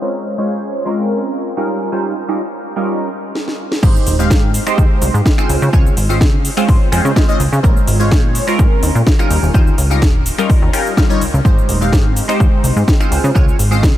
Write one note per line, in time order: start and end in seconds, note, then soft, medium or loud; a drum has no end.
0.02 0.35 G#3 medium
0.02 0.35 C4 medium
0.02 0.35 C#4 medium
0.02 0.35 F4 medium
0.02 0.36 A#4 medium
0.38 0.83 G#3 medium
0.38 0.83 C#4 medium
0.38 0.83 F4 medium
0.38 0.83 C5 medium
0.38 0.83 C#5 medium
0.85 1.54 G#3 medium
0.85 1.54 C4 medium
0.85 1.54 C#4 medium
0.85 1.55 F4 medium
0.85 1.55 A#4 medium
1.57 1.90 G3 medium
1.57 1.90 C#4 medium
1.57 1.90 D#4 medium
1.57 1.90 F4 medium
1.57 1.90 A#4 medium
1.92 2.13 G3 medium
1.92 2.13 C#4 medium
1.92 2.13 D#4 medium
1.92 2.13 F4 medium
1.92 2.14 C5 medium
2.28 2.41 G3 medium
2.28 2.41 C#4 medium
2.28 2.41 D#4 medium
2.28 2.41 F4 medium
2.28 2.41 A#4 medium
2.76 3.09 G3 medium
2.76 3.09 C#4 medium
2.76 3.09 D#4 medium
2.76 3.09 F4 medium
2.76 3.09 A#4 loud
3.35 snare medium
3.48 snare medium
3.72 snare medium
3.82 3.98 G#1 loud
3.82 4.16 G#3 medium
3.82 4.16 C4 medium
3.82 4.16 D#4 medium
3.82 4.16 G4 medium
3.82 4.17 C5 medium
3.82 kick loud
3.82 crash loud
3.82 shaker soft
3.96 shaker soft
4.07 4.32 D#1 medium
4.07 open hi-hat loud
4.07 shaker medium
4.19 4.64 G#3 medium
4.19 4.64 C4 medium
4.19 4.64 D#4 medium
4.19 4.64 G4 medium
4.19 4.64 F5 medium
4.19 shaker soft
4.30 4.59 G#2 loud
4.30 kick loud
4.30 snare loud
4.30 shaker soft
4.54 open hi-hat loud
4.54 shaker medium
4.66 5.35 G#3 medium
4.66 5.35 C4 medium
4.66 5.35 D#4 medium
4.66 5.36 G4 medium
4.66 5.36 C5 medium
4.66 finger snap medium
4.66 shaker soft
4.78 4.86 D#2 medium
4.78 kick loud
4.78 shaker soft
5.02 5.10 C2 medium
5.02 open hi-hat loud
5.02 shaker medium
5.14 5.21 G#2 medium
5.14 shaker soft
5.26 kick loud
5.26 snare loud
5.26 shaker soft
5.38 5.70 G#3 medium
5.38 5.70 C4 medium
5.38 5.71 C#4 medium
5.38 5.71 F4 medium
5.38 5.71 C5 loud
5.38 finger snap medium
5.38 shaker soft
5.49 5.57 C#2 medium
5.49 open hi-hat loud
5.49 shaker medium
5.62 5.69 C#3 loud
5.62 shaker soft
5.73 5.89 C#2 loud
5.73 5.94 G#3 medium
5.73 5.94 C4 medium
5.73 5.94 C#4 medium
5.73 5.94 F4 medium
5.73 5.94 C#5 loud
5.73 kick loud
5.73 shaker soft
5.86 shaker soft
5.97 6.22 G#1 medium
5.97 open hi-hat loud
5.97 shaker medium
6.09 6.22 G#3 medium
6.09 6.22 C4 medium
6.09 6.22 C#4 medium
6.09 6.22 F4 medium
6.09 6.22 C5 medium
6.09 shaker soft
6.21 6.50 C#3 loud
6.21 kick loud
6.21 snare loud
6.21 shaker soft
6.45 open hi-hat loud
6.45 shaker medium
6.57 6.89 G#3 medium
6.57 6.90 C4 medium
6.57 6.90 C#4 medium
6.57 6.90 F4 medium
6.57 6.90 C5 loud
6.57 finger snap medium
6.57 shaker soft
6.68 6.76 G#2 medium
6.68 kick loud
6.68 open hi-hat medium
6.68 shaker soft
6.92 7.00 F2 medium
6.92 7.13 G#3 medium
6.92 7.13 C4 medium
6.92 7.13 C#4 medium
6.92 7.13 F4 medium
6.92 7.14 C5 loud
6.92 finger snap medium
6.92 open hi-hat loud
6.92 shaker medium
7.05 7.12 C#3 loud
7.05 shaker soft
7.16 7.26 G#3 medium
7.16 7.26 C4 medium
7.16 7.26 C#4 medium
7.16 7.26 F4 medium
7.16 7.26 C5 loud
7.16 kick loud
7.16 snare loud
7.16 shaker soft
7.28 7.41 G#3 loud
7.28 7.41 C4 medium
7.28 7.41 C#4 medium
7.28 7.41 F4 medium
7.28 7.41 D#5 loud
7.28 shaker soft
7.40 7.48 C#2 medium
7.40 open hi-hat loud
7.40 shaker medium
7.53 7.60 C#3 loud
7.53 shaker soft
7.63 7.79 A#1 loud
7.63 7.97 G#3 medium
7.63 7.97 C4 medium
7.63 7.97 C#4 medium
7.63 7.97 F4 medium
7.63 7.97 A#4 medium
7.63 kick loud
7.63 shaker soft
7.77 shaker soft
7.87 8.13 G#1 medium
7.87 open hi-hat loud
7.87 shaker medium
8.00 8.44 G#3 medium
8.00 8.45 C#4 medium
8.00 8.45 F4 medium
8.00 8.45 C5 medium
8.00 8.45 C#5 medium
8.00 shaker soft
8.11 8.40 A#2 loud
8.11 kick loud
8.11 snare loud
8.11 shaker soft
8.35 open hi-hat loud
8.35 shaker medium
8.47 9.16 G#3 medium
8.47 9.16 C4 medium
8.47 9.16 C#4 medium
8.47 9.16 F4 medium
8.47 9.17 A#4 loud
8.47 finger snap medium
8.47 shaker soft
8.59 8.67 G#2 medium
8.59 kick loud
8.59 shaker soft
8.83 8.91 D#2 medium
8.83 open hi-hat loud
8.83 shaker medium
8.95 9.02 A#2 medium
8.95 shaker soft
9.07 kick loud
9.07 snare loud
9.07 shaker soft
9.19 9.51 G3 medium
9.19 9.52 C#4 medium
9.19 9.52 D#4 medium
9.19 9.52 F4 medium
9.19 9.52 A#4 loud
9.19 finger snap medium
9.19 shaker soft
9.30 9.38 D#2 medium
9.30 open hi-hat loud
9.30 shaker medium
9.43 9.50 D#1 loud
9.43 shaker soft
9.54 9.70 D#2 loud
9.54 9.75 G3 medium
9.54 9.75 C#4 medium
9.54 9.75 D#4 medium
9.54 9.75 F4 medium
9.54 9.75 C5 loud
9.54 kick loud
9.54 shaker soft
9.67 shaker soft
9.78 10.04 C#2 medium
9.78 open hi-hat loud
9.78 shaker medium
9.90 10.03 G3 medium
9.90 10.03 C#4 medium
9.90 10.03 D#4 medium
9.90 10.03 F4 medium
9.90 10.03 A#4 medium
9.90 shaker soft
10.02 10.31 D#1 loud
10.02 kick loud
10.02 snare loud
10.02 shaker soft
10.26 open hi-hat loud
10.26 shaker medium
10.38 10.71 G3 medium
10.38 10.71 C#4 medium
10.38 10.71 D#4 medium
10.38 10.71 F4 medium
10.38 10.71 A#4 loud
10.38 finger snap medium
10.38 shaker soft
10.50 kick loud
10.50 open hi-hat medium
10.50 shaker soft
10.62 10.69 D#2 medium
10.73 10.94 G3 medium
10.73 10.94 C#4 medium
10.73 10.95 D#4 medium
10.73 10.95 F4 medium
10.73 10.95 A#4 loud
10.73 finger snap medium
10.73 open hi-hat loud
10.73 shaker medium
10.86 shaker soft
10.97 11.07 G3 medium
10.97 11.07 C#4 medium
10.97 11.07 D#4 medium
10.97 11.07 F4 medium
10.97 11.07 A#4 medium
10.97 kick loud
10.97 snare loud
10.97 shaker soft
11.09 11.22 G3 loud
11.09 11.22 C#4 medium
11.09 11.22 D#4 medium
11.09 11.22 F4 medium
11.09 11.22 C#5 loud
11.09 shaker soft
11.21 11.31 C#2 soft
11.21 open hi-hat loud
11.21 shaker medium
11.34 11.41 C#2 medium
11.34 shaker soft
11.45 11.60 G#1 loud
11.45 11.78 G#3 medium
11.45 11.78 C4 medium
11.45 11.78 D#4 medium
11.45 11.78 G4 medium
11.45 11.78 C5 medium
11.45 kick loud
11.45 shaker soft
11.58 shaker soft
11.69 11.94 D#1 medium
11.69 open hi-hat loud
11.69 shaker medium
11.81 12.26 G#3 medium
11.81 12.26 C4 medium
11.81 12.26 D#4 medium
11.81 12.26 G4 medium
11.81 12.26 F5 medium
11.81 shaker soft
11.93 12.21 G#2 loud
11.93 kick loud
11.93 snare loud
11.93 shaker soft
12.16 open hi-hat loud
12.16 shaker medium
12.28 12.97 G#3 medium
12.28 12.97 C4 medium
12.28 12.97 D#4 medium
12.28 12.97 G4 medium
12.28 12.98 C5 loud
12.28 finger snap medium
12.28 shaker soft
12.40 12.48 D#2 medium
12.40 kick loud
12.40 shaker soft
12.64 12.72 C2 medium
12.64 open hi-hat loud
12.64 shaker medium
12.76 12.83 G#2 medium
12.76 shaker soft
12.88 kick loud
12.88 snare loud
12.88 shaker soft
13.00 13.33 G#3 medium
13.00 13.33 C4 medium
13.00 13.33 C#4 medium
13.00 13.33 F4 medium
13.00 13.33 C5 loud
13.00 finger snap medium
13.00 shaker soft
13.12 13.19 C#2 medium
13.12 open hi-hat loud
13.12 shaker medium
13.24 13.31 C#3 loud
13.24 shaker soft
13.35 13.51 C#2 loud
13.35 13.56 G#3 medium
13.35 13.56 C4 medium
13.35 13.56 C#4 medium
13.35 13.56 F4 medium
13.35 13.56 C#5 loud
13.35 kick loud
13.35 shaker soft
13.48 shaker soft
13.59 13.85 G#1 medium
13.59 open hi-hat loud
13.59 shaker medium
13.71 13.84 G#3 medium
13.71 13.84 C4 medium
13.71 13.84 C#4 medium
13.71 13.84 F4 medium
13.71 13.84 C5 medium
13.71 shaker soft
13.83 13.98 C#3 loud
13.83 kick loud
13.83 snare loud
13.83 shaker soft